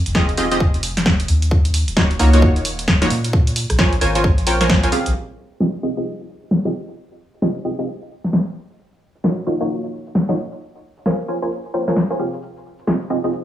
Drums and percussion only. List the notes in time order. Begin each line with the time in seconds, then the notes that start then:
0.06 closed hi-hat
0.15 kick, snare
0.29 closed hi-hat
0.37 open hi-hat
0.51 cross-stick, closed hi-hat
0.60 kick
0.74 closed hi-hat
0.83 open hi-hat
0.97 snare, closed hi-hat
1.06 kick, snare
1.20 closed hi-hat
1.28 open hi-hat
1.42 closed hi-hat
1.51 kick
1.65 closed hi-hat
1.74 open hi-hat
1.88 closed hi-hat
1.97 kick, snare
2.11 closed hi-hat
2.19 open hi-hat
2.33 cross-stick, closed hi-hat
2.42 kick
2.56 closed hi-hat
2.65 open hi-hat
2.79 closed hi-hat
2.88 kick, snare
3.02 snare, closed hi-hat
3.10 open hi-hat
3.24 closed hi-hat
3.33 kick
3.47 closed hi-hat
3.56 open hi-hat
3.70 cross-stick, closed hi-hat
3.79 kick, snare
3.93 closed hi-hat
4.01 open hi-hat
4.15 cross-stick, closed hi-hat
4.24 kick
4.38 closed hi-hat
4.47 open hi-hat
4.61 snare, closed hi-hat
4.70 kick, snare
4.83 closed hi-hat
4.92 open hi-hat
5.06 closed hi-hat
5.15 crash, shaker
5.29 shaker
5.52 shaker
5.60 snare, shaker
5.74 shaker
5.97 shaker
6.06 shaker
6.20 shaker
6.42 shaker
6.51 snare, shaker
6.65 snare, shaker
6.88 shaker
6.97 shaker
7.11 shaker
7.33 shaker
7.42 snare
7.56 shaker
7.79 shaker
7.87 shaker
8.02 shaker
8.24 snare, shaker
8.33 snare
8.47 shaker
8.70 shaker
8.79 shaker
8.93 shaker
9.15 shaker
9.24 snare
9.38 shaker
9.61 shaker
9.69 shaker
9.83 shaker
10.06 shaker
10.15 snare, shaker
10.29 snare, shaker
10.52 shaker
10.60 shaker
10.74 shaker
10.97 shaker
11.06 snare, shaker
11.19 shaker
11.42 shaker
11.51 shaker
11.65 shaker
11.88 snare, shaker
11.96 snare, shaker
12.11 shaker
12.33 shaker
12.42 shaker
12.56 shaker
12.79 shaker
12.87 snare, shaker
13.01 shaker
13.24 shaker
13.33 shaker